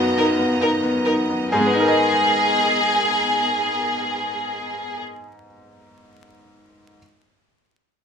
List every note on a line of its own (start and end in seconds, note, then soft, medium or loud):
0.00 1.47 B1 medium
0.00 1.54 F#2 medium
0.00 0.30 B3 medium
0.00 1.48 B3 medium
0.00 0.18 D#4 medium
0.00 1.54 F4 medium
0.00 1.47 F#4 medium
0.00 1.54 A#4 loud
0.00 1.48 D#5 medium
0.00 1.48 A#5 loud
0.17 0.52 D#4 medium
0.17 0.25 A#4 medium
0.39 0.74 B3 medium
0.61 0.97 D#4 medium
0.61 0.69 A#4 medium
0.83 1.20 B3 soft
1.05 1.43 D#4 soft
1.05 1.13 A#4 medium
1.30 1.52 B3 soft
1.51 5.46 G#2 medium
1.51 5.00 B3 medium
1.51 4.99 G#4 medium
1.51 5.45 G#4 medium
1.51 5.00 A#4 medium
1.51 5.00 D#5 medium
1.60 5.53 G#3 medium
1.67 5.60 B3 medium
1.73 5.66 D#4 medium
1.80 5.73 A#4 medium
1.88 5.81 D#5 medium